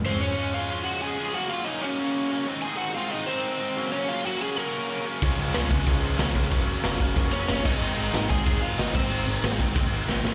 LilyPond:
<<
  \new Staff \with { instrumentName = "Overdriven electric guitar" } { \time 4/4 \key aes \mixolydian \tempo 4 = 186 <c' c''>8 <des' des''>4 <f' f''>4 <ges' ges''>8 <aes' aes''>4 | <ges' ges''>8 <f' f''>8 <ees' ees''>8 <des' des''>2 r8 | <aes' aes''>8 <ges' ges''>8 <f' f''>8 <ees' ees''>8 <c' c''>2 | <des' des''>8 <f' f''>8 <ges' ges''>8 <aes' aes''>8 <bes' bes''>4. r8 |
r1 | r2 r8 <des' des''>4 <ees' ees''>8~ | <ees' ees''>4. <aes' aes''>4 <f' f''>8 <ees' ees''>8 <c' c''>8~ | <c' c''>8 r2. r8 | }
  \new Staff \with { instrumentName = "Distorted electric guitar" } { \clef bass \time 4/4 \key aes \mixolydian <des f aes des'>4 <des f aes des'>8 <des f aes des'>8 <des f aes des'>4 <des f aes des'>8 <des f aes des'>8 | <ges, des ges bes des'>4 <ges, des ges bes des'>8 <ges, des ges bes des'>8 <ges, des ges bes des'>4 <ges, des ges bes des'>8 <aes, ees aes c' ees'>8 | <aes, ees aes c' ees'>4 <aes, ees aes c' ees'>8 <aes, ees aes c' ees'>8 <aes, ees aes c' ees'>4 <aes, ees aes c' ees'>8 <ges, des ges bes des'>8 | <ges, des ges bes des'>4 <ges, des ges bes des'>8 <ges, des ges bes des'>8 <ges, des ges bes des'>4 <ges, des ges bes des'>8 <ges, des ges bes des'>8 |
<des f aes des'>4 <des f aes des'>8 <des f aes des'>8 <des f aes des'>4 <des f aes des'>8 <des f aes des'>8 | <ges, des ges bes des'>4 <ges, des ges bes des'>8 <ges, des ges bes des'>8 <ges, des ges bes des'>4 <ges, des ges bes des'>8 <aes, ees aes c' ees'>8 | <aes, ees aes c' ees'>4 <aes, ees aes c' ees'>8 <aes, ees aes c' ees'>8 <aes, ees aes c' ees'>4 <aes, ees aes c' ees'>8 <aes, ees aes c' ees'>8 | <aes, ees aes c' ees'>4 <aes, ees aes c' ees'>8 <aes, ees aes c' ees'>8 <aes, ees aes c' ees'>4 <aes, ees aes c' ees'>8 <aes, ees aes c' ees'>8 | }
  \new Staff \with { instrumentName = "Picked electric bass" } { \clef bass \time 4/4 \key aes \mixolydian r1 | r1 | r1 | r1 |
des,8 des,8 des,8 des,8 des,4 des,8 des,8 | ges,,8 ges,,8 ges,,8 ges,,8 ges,,4 ges,,8 aes,,8 | aes,,8 aes,,8 aes,,8 aes,,8 aes,,4 aes,,8 aes,,8 | aes,,8 aes,,8 aes,,8 aes,,8 aes,,4 aes,,8 aes,,8 | }
  \new DrumStaff \with { instrumentName = "Drums" } \drummode { \time 4/4 r4 r4 r4 r4 | r4 r4 r4 r4 | r4 r4 r4 r4 | r4 r4 r4 r4 |
<cymc bd>4 <cymc sn>8 bd8 <cymc bd>4 <cymc sn>8 bd8 | <cymc bd>4 <cymc sn>8 bd8 <cymc bd>4 <cymc sn>8 <cymc bd>8 | cymc4 <cymc sn>8 bd8 <cymc bd>4 <cymc sn>8 bd8 | cymc4 <cymc sn>8 bd8 <cymc bd>4 sn8 sn8 | }
>>